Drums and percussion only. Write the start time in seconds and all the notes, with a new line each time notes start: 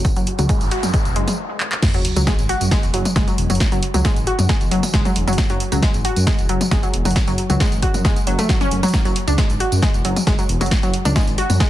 0.05 kick, closed hi-hat, tambourine
0.16 closed hi-hat, tambourine
0.27 open hi-hat
0.39 closed hi-hat, mid tom, tambourine
0.49 kick, closed hi-hat, tambourine
0.61 closed hi-hat, tambourine
0.71 open hi-hat
0.83 closed hi-hat, mid tom, tambourine
0.94 kick, closed hi-hat, tambourine
1.05 closed hi-hat, tambourine
1.16 open hi-hat
1.28 open hi-hat, mid tom, tambourine
1.60 clap
1.72 clap
1.82 kick, snare, closed hi-hat, tambourine, crash
1.94 closed hi-hat, tambourine
2.05 open hi-hat
2.16 closed hi-hat, tambourine
2.27 kick, snare, closed hi-hat, tambourine
2.39 closed hi-hat, tambourine
2.49 open hi-hat
2.61 closed hi-hat, tambourine
2.71 kick, snare, closed hi-hat
2.83 closed hi-hat, tambourine
2.94 open hi-hat
3.05 closed hi-hat, mid tom, tambourine
3.16 kick, snare, closed hi-hat, tambourine
3.28 closed hi-hat, tambourine
3.38 open hi-hat
3.50 closed hi-hat, mid tom, tambourine
3.55 closed hi-hat
3.60 kick, snare, closed hi-hat, tambourine
3.72 closed hi-hat, tambourine
3.83 open hi-hat
3.94 closed hi-hat, mid tom, tambourine
4.05 kick, snare, closed hi-hat, tambourine
4.16 closed hi-hat, tambourine
4.27 open hi-hat
4.39 closed hi-hat, mid tom, tambourine
4.49 kick, snare, closed hi-hat, tambourine
4.61 closed hi-hat, tambourine
4.71 open hi-hat
4.83 open hi-hat, mid tom, tambourine
4.94 kick, snare, closed hi-hat
5.05 closed hi-hat, mid tom, tambourine
5.16 open hi-hat
5.28 closed hi-hat, mid tom, tambourine
5.33 closed hi-hat
5.38 kick, snare, closed hi-hat, tambourine
5.50 closed hi-hat, tambourine
5.60 open hi-hat
5.72 closed hi-hat, tambourine
5.83 kick, snare, closed hi-hat, tambourine
5.94 closed hi-hat, tambourine
6.05 open hi-hat
6.16 closed hi-hat, tambourine
6.27 kick, snare, closed hi-hat
6.39 closed hi-hat, tambourine
6.49 open hi-hat
6.61 closed hi-hat, mid tom, tambourine
6.71 kick, snare, closed hi-hat, tambourine
6.83 closed hi-hat, tambourine
6.94 open hi-hat
7.05 closed hi-hat, mid tom, tambourine
7.11 closed hi-hat
7.16 kick, snare, closed hi-hat, tambourine
7.28 closed hi-hat, tambourine
7.38 open hi-hat
7.50 closed hi-hat, mid tom, tambourine
7.60 kick, snare, closed hi-hat, tambourine
7.72 closed hi-hat, tambourine
7.82 kick, open hi-hat
7.94 closed hi-hat, mid tom, tambourine
8.05 kick, snare, closed hi-hat, tambourine
8.16 closed hi-hat, tambourine
8.27 open hi-hat
8.39 open hi-hat, mid tom, tambourine
8.49 kick, snare, closed hi-hat, tambourine
8.61 closed hi-hat, mid tom, tambourine
8.71 open hi-hat
8.83 closed hi-hat, mid tom, tambourine
8.88 closed hi-hat
8.94 kick, snare, closed hi-hat
9.05 closed hi-hat, tambourine
9.16 open hi-hat
9.28 closed hi-hat, tambourine
9.38 kick, snare, closed hi-hat, tambourine
9.50 closed hi-hat, tambourine
9.60 open hi-hat
9.72 closed hi-hat, tambourine
9.82 kick, snare, closed hi-hat, tambourine
9.94 closed hi-hat, tambourine
10.05 open hi-hat
10.16 closed hi-hat, mid tom, tambourine
10.27 kick, snare, closed hi-hat, tambourine
10.39 closed hi-hat, tambourine
10.49 open hi-hat
10.61 closed hi-hat, mid tom, tambourine
10.66 closed hi-hat
10.71 kick, snare, closed hi-hat, tambourine
10.83 closed hi-hat, tambourine
10.94 open hi-hat
11.05 closed hi-hat, mid tom, tambourine
11.16 kick, snare, closed hi-hat, tambourine
11.27 closed hi-hat, tambourine
11.38 open hi-hat
11.50 closed hi-hat, mid tom, tambourine
11.60 kick, snare, closed hi-hat